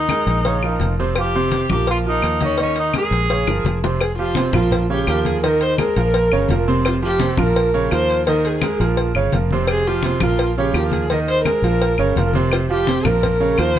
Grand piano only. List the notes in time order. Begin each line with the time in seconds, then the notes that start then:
0.10 G#3 G#4 A#4
0.45 C#3 C#4 C#5
0.63 F3 F4 A#4
0.99 C3 C4 C5
1.17 F3 F4 G4
1.35 C3 C4 C5
1.70 F3 F4 A#4
1.89 F3 F4 A#4
2.06 F3 F4 A#4
2.42 D#3 D#4 D#5
2.60 D#3 D#4 D#5
2.96 G#3 G#4 A#4
3.30 C#3 C#4 C#5
3.47 F3 F4 A#4
3.84 C3 C4 C5
4.19 F3 F4 G4
4.36 C3 C4 C5
4.54 F3 F4 A#4
4.90 C#3 C#4 C#5
5.08 F3 F4 A#4
5.43 D#3 D#4 D#5
5.79 G#3 G#4 A#4
5.97 F3 F4 A#4
6.32 C#3 C#4 C#5
6.50 F3 F4 A#4
6.68 C3 C4 C5
7.02 F3 F4 G4
7.20 C3 C4 C5
7.38 F3 F4 A#4
7.74 C#3 C#4 C#5
7.91 F3 F4 A#4
8.28 D#3 D#4 D#5
8.63 G#3 G#4 A#4
8.80 F3 F4 A#4
9.16 C#3 C#4 C#5
9.34 F3 F4 A#4
9.52 C3 C4 C5
9.88 F3 F4 G4
10.05 C3 C4 C5
10.22 F3 F4 A#4
10.58 C#3 C#4 C#5
10.75 F3 F4 A#4
11.11 D#3 D#4 D#5
11.47 G#3 G#4 A#4
11.64 F3 F4 A#4
11.99 C#3 C#4 C#5
12.17 F3 F4 A#4
12.35 C3 C4 C5
12.70 F3 F4 G4
12.88 C3 C4 C5
13.05 F3 F4 A#4
13.40 C#3 C#4 C#5
13.59 F3 F4 A#4